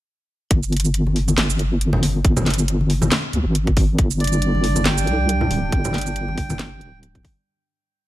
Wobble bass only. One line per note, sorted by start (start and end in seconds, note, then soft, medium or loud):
0.51 1.36 G1 loud
1.38 2.23 G1 medium
2.25 3.10 G1 loud
3.33 3.45 D2 medium
3.46 3.97 G#1 medium
3.99 5.09 G1 loud
5.07 5.50 C2 medium
5.51 5.71 D1 medium
5.72 6.83 G1 medium
6.81 7.23 D1 medium